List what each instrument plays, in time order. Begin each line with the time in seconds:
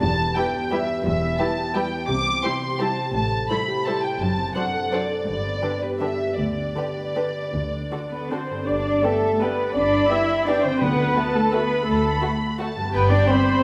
Already playing: harp B3 G4 B4
0.01 double bass section E1, cello section E2, harp E2, violin section A5
0.18 harp B3
0.36 viola section G3 E4, harp E4, violin section G4 B4 G5
0.54 harp G4
0.70 viola section G3 E4, violin section G4 B4 E5, harp B4
0.89 harp G4
1.04 double bass section E1, cello section E2, harp E2, violin section E5
1.22 harp B3
1.38 viola section G3 E4, harp E4, violin section G4 B4 A5
1.57 harp G4
1.74 viola section G3 E4, violin section G4 B4 G5, harp B4
1.92 harp G4
2.08 double bass section C2, cello section C3, harp C3, violin section D6
2.26 harp C4
2.43 viola section G3 E4, harp E4, violin section G4 C5 C6
2.62 harp G4
2.79 viola section G3 E4, violin section G4 C5 A5, harp C5
2.97 harp G4
3.13 double bass section A1, cello section A2, harp A2, violin section A5
3.31 harp C4
3.49 viola section G3 E4, harp E4, violin section A4 C5 B5
3.68 harp G4
3.86 viola section G3 E4, violin section A4 C5 A5, harp C5
4.03 harp G4, violin section G5
4.20 double bass section F#1, cello section F#2, harp F#2, violin section A5
4.37 harp C4
4.55 viola section F#3 D4, harp D4, violin section A4 C5 F#5
4.73 harp A4
4.92 viola section F#3 D4, violin section A4 C5 D5, harp C5
5.09 harp A4
5.25 double bass section G1, cello section G2, harp G2, violin section D5
5.43 harp B3
5.62 viola section D3 D4, harp D4, violin section G4 B4
5.81 harp G4, violin section B4
6.00 viola section D3 D4, violin section G4 B4 E5, harp B4
6.20 harp G4
6.37 double bass section D2, cello section D2, harp D3, violin section D5
6.57 harp D4
6.76 viola section D3 D4, harp G4, violin section G4 B4
6.96 harp B4
7.16 viola section D3 D4, violin section G4 B4
7.35 harp B4
7.53 double bass section D2, cello section D2, harp D3
7.72 harp D4
7.91 viola section D3 D4, violin section F#4 A4, harp F#4
8.11 cello section B3, harp A4, viola section B4
8.30 viola section D3 D4 C5, cello section C4, violin section F#4 A4, harp D5
8.50 harp G2 A4
8.55 harp B3
8.59 harp D4
8.64 harp G4, viola section D5
8.68 double bass section G1, cello section D4
9.04 cello section A3, violin section B3 G4 E5, viola section A4
9.41 cello section B3, violin section B3 G4 D5, viola section B4
9.75 double bass section G1, cello section D4, viola section D5, violin section B5
10.10 violin section B3 G4, cello section E4, viola section E5
10.46 violin section B3 G4 G5, cello section D4, viola section D5
10.63 harp D3, cello section C4, viola section C5
10.68 harp A3
10.72 harp D4
10.77 harp F#4
10.81 double bass section D2, timpani D3, cello section B3, viola section B4, violin section F#5
11.15 violin section A3 F#4 A5
11.35 cello section A3, viola section A4
11.53 violin section A3 F#4 B5, cello section B3, viola section B4
11.87 double bass section D2, cello section A3, viola section A4
12.21 violin section A3 F#4
12.58 violin section A3 F#4 A5
12.76 harp G2
12.80 harp G3
12.85 harp B3
12.89 harp G4
12.93 double bass section G1, cello section B3, viola section B4, violin section G5
13.10 cello section D4, viola section D5
13.28 violin section B3 G4 B5, cello section C4, viola section C5